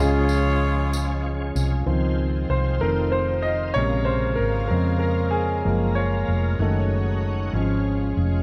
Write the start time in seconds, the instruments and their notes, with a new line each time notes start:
Already playing: fingered electric bass C#2, tonewheel organ F3 G#3 C#4, grand piano G#3
0.00 grand piano C#3 C#4 F4 G#4, saxophone section F4 G#4 C#5
0.29 tambourine
0.93 tambourine
1.55 fingered electric bass C2, tambourine
1.86 fingered electric bass C#2, grand piano D#3 F3 C4, tonewheel organ G#3 C4 F4 C5, string section C4 F4 G#4 C5
2.49 fingered electric bass C2, grand piano C5
2.79 fingered electric bass F1, grand piano D#3 C4 A4 A#4, tonewheel organ F3 D#4 F4, string section D#4 F4
3.12 grand piano C5
3.42 grand piano D#5
3.74 fingered electric bass A#1, grand piano C3 C#3 G#3 C#5, tonewheel organ G#3 A#3 A#4, string section G#4 A#4 F5
4.05 grand piano C5
4.36 fingered electric bass G#1, grand piano A#4
4.68 fingered electric bass F2, grand piano C#3 G#3 C4 A#4
4.99 grand piano A#4
5.31 grand piano G#4
5.64 fingered electric bass F#1, grand piano F3 G#3 A#3, tonewheel organ F3, string section C#4 C#5
5.95 grand piano C#5
6.28 fingered electric bass F1
6.59 fingered electric bass F#1, grand piano D#3 G#3 A3, tonewheel organ F#3 C#4 D#4 F#4, string section D#4 F#4
7.52 fingered electric bass G#1, grand piano F3 G#3 C#4, tonewheel organ G#3 F4, string section C#4 F4 G#4
8.17 fingered electric bass F1